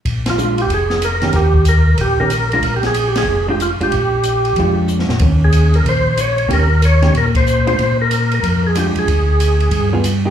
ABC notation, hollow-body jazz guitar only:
X:1
M:4/4
L:1/8
Q:"Swing" 1/4=186
K:Eb
V:1 name="Hollow-body jazz guitar"
z2 [A,DF] z4 [E,B,_DG] | z4 z [E,B,_DG] z [A,=DF] | z4 z [A,DF] z [A,DF] | z4 [A,DF]3 z |
[E,B,_D]4- [E,B,D] z3 | [E,B,_DG] z2 [E,B,DG] z3 [A,=DF] | z6 [A,DF]2 | z4 z [G,=B,FA] z [_B,EG] |]